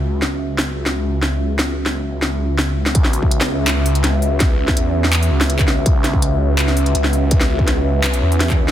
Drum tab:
HH |----------------|----------------|x-o-x---x-oxx-o-|x---x---xo-oxo--|
CP |----------------|----------------|--------x-------|--------x----x--|
SD |--o---o--o---o--|-o--o---o---o--o|-o---o--o---o---|o--o---o---o--o-|
BD |----------------|----------------|o--o------------|o--o---------o--|

HH |x-o-x---x-oxx-o-|x---x---xo-oxo--|
CP |--------x-------|--------x----x--|
SD |--o------o---o--|-o--o---o---o--o|
BD |o--o------------|o--o---------o--|